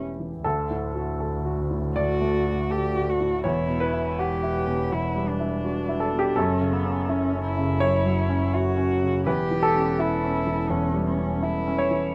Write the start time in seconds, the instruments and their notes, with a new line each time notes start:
Already playing: double bass E1, grand piano E2 E3 A3 E4 G4
0.20 grand piano E3
0.44 double bass D2, grand piano D2 A4
0.70 grand piano A2
0.95 grand piano F#4
1.20 grand piano A4
1.45 grand piano F#4
1.71 grand piano A2
1.96 grand piano D2 D5, cello F#4
2.21 grand piano A3
2.46 grand piano F#4
2.70 cello G4, grand piano A4
2.95 grand piano F#4
3.09 cello F#4
3.20 grand piano A2
3.44 double bass E1, grand piano E2 C#5, cello E4
3.68 grand piano B2
3.80 grand piano B4
3.93 grand piano E4
4.18 cello G4, grand piano F#5
4.43 grand piano E4
4.67 grand piano B2
4.92 grand piano E2, cello E4
5.16 grand piano G3
5.28 cello D4
5.40 grand piano E4
5.64 grand piano F#4
5.89 grand piano E4
6.00 grand piano A4
6.12 grand piano B2
6.19 grand piano G4
6.36 double bass F#1, grand piano F#2 A4, cello C#4
6.61 grand piano C#3
6.73 cello B3
6.84 grand piano C#4
7.09 cello C#4, grand piano E4
7.34 grand piano C#4
7.46 cello E4
7.57 grand piano C#3
7.80 grand piano F#2 C#5
8.05 grand piano F#3
8.29 grand piano C#4
8.54 grand piano E4, cello F#4
8.77 grand piano C#4
9.03 grand piano C#3
9.26 double bass E1, grand piano E2 B4, cello G4
9.51 grand piano E3
9.63 grand piano A4
9.75 grand piano C#4
9.99 grand piano E4, cello E4
10.23 grand piano C#4
10.47 grand piano E3
10.70 grand piano E2, cello C#4
10.94 grand piano G3
11.07 cello C#4
11.19 grand piano C#4
11.42 grand piano E4, cello E4
11.67 grand piano C#4
11.78 grand piano C#5
11.91 grand piano E3